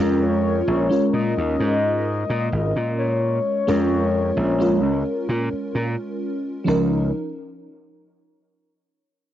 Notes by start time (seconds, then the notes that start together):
Already playing: G#3 C#4 A#4
0.00 F2 F4 A#4
0.21 C#5
0.68 A#1
0.89 G#3 C#4 F4 A#4
1.13 A#2 D#5
1.38 D#2
1.60 G#2
2.30 A#2
2.52 G#1
2.76 A#2
2.99 C#5
3.67 F2 G#3 C#4 F4 A#4
4.37 A#1
4.59 G#3 C#4 F4 A#4
4.83 C#2
5.29 A#2
5.53 muted slap bass stroke
5.75 A#2
6.64 C#2 F3 C#4 D#4
6.69 A#4